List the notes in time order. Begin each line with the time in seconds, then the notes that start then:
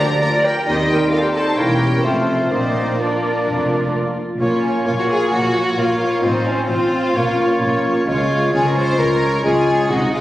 Already playing: D2 D3 F3 D4 G4 A#4 D5 A#5
0.21 F4 A#4 D5 A#5
0.43 G4 A#4 G5
0.65 D#2 D#3 G3 C4 D#4 G4 C5 D#5
0.89 G4 A#4 G5
1.11 F4 A4 F5
1.22 G4 A#4 G5
1.33 A4 C5 A5
1.55 E1 E2 A#3 C#4 E4 G4 A#4 C#5 G5
2.02 F1 F2 A3 C4 F4 A4 C5
2.50 A#1 A#2 A#3 C4 D4 D#4 F4 C5 D5
2.98 A#3 D4 A#4
3.46 F1 F2
4.39 A#1 A#2 A#3 C#4 F4 C#5
4.63 A#3 F4 C#5
4.85 A#1 A#2 A#3 F4 C#5
5.00 F#4
5.09 A#3 F4 G#4 C#5
5.30 A#1 A#2 A#3 F4 F#4 C#5
5.55 A#3 F4 C#5
5.77 A#1 A#2 A#3 F4 C#5
6.01 A#3 F4 C#5
6.22 A1 A2 C4 D#4 F4 C5
6.45 C4 C#4 F4 C5
6.69 A1 A2 C4 F4 C5
6.93 C4 F4 C5
7.16 A#1 A#2 A#3 C#4 F4 C#5
7.39 A#3 F4 C#5
7.61 A#1 A#2 A#3 F4 C#5
7.84 A#3 F4 C#5
8.07 C#2 C#3 G#3 F4 C#5
8.30 G#3 F4 C#5
8.53 C#2 C#3 G#3 F4 G#4 C#5
8.66 A#4
8.75 G#3 F4 C5 C#5
8.98 C#2 C#3 G#3 F4 A#4 C#5
9.21 G#3 F4 C#5
9.43 C#2 C#3 G#3 F4 G#4 C#5
9.67 G#3 F4 C#5
9.90 C2 C3 G#3 C4 D#4 F#4 D#5
10.12 G#3 D#4 F4 D#5